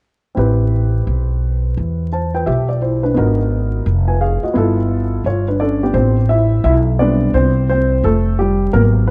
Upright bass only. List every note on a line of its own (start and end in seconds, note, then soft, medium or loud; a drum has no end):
0.37 1.03 A1 medium
1.07 1.73 B1 medium
1.77 2.43 E2 medium
2.47 3.13 B1 medium
3.17 3.83 G#1 medium
3.86 4.40 F1 medium
4.43 muted upright bass stroke soft
4.55 5.22 G1 medium
5.24 5.91 G1 medium
5.94 6.61 A1 medium
6.64 7.31 B1 medium
7.34 8.00 C2 medium
8.04 8.70 F1 medium
8.74 9.11 G#1 medium